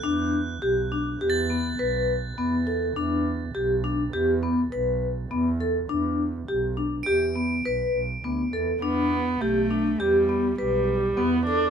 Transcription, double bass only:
X:1
M:5/4
L:1/8
Q:1/4=102
K:Em
V:1 name="Double bass" clef=bass
E,,2 B,,,2 E,,2 B,,,2 E,,2 | E,,2 B,,,2 E,,2 B,,,2 E,,2 | E,,2 B,,,2 E,,2 B,,, B,,, D,, E,, | E,,2 B,,,2 E,,2 B,,,2 E,,2 |]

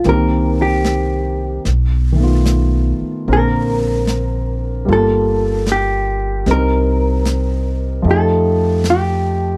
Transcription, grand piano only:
X:1
M:4/4
L:1/8
Q:"Swing" 1/4=75
K:Cdor
V:1 name="Grand piano"
[E,B,CG]4 z [^D,A,=B,^E]3 | [D,B,CB]4 [G,B,FA]4 | [G,CEB]4 [F,A,EG]4 |]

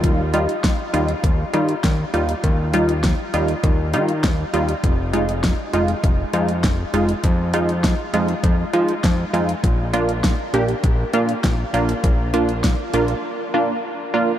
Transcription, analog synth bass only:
X:1
M:4/4
L:1/16
Q:1/4=100
K:Fdor
V:1 name="Analog synth bass" clef=bass
E,,4- E,, z E,,2 E,,2 E,2 E,,2 E,,2 | E,,4- E,, z E,,2 E,,2 E,2 E,,2 E,,2 | F,,,4- F,,, z F,,,2 F,,,2 F,,2 F,,,2 F,,,2 | F,,4- F,, z F,,2 F,,2 F,2 F,,2 F,,2 |
B,,,4- B,,, z B,,,2 B,,,2 B,,2 B,,,2 B,,,2 | B,,,4- B,,, z B,,,2 z8 |]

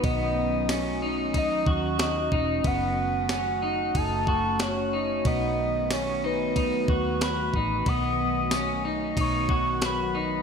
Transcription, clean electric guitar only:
X:1
M:4/4
L:1/8
Q:1/4=92
K:Bmix
V:1 name="Clean electric guitar"
B,2 C D D F F D | B,2 C D D F F D | B,2 C D D F F D | B,2 C D D F F D |]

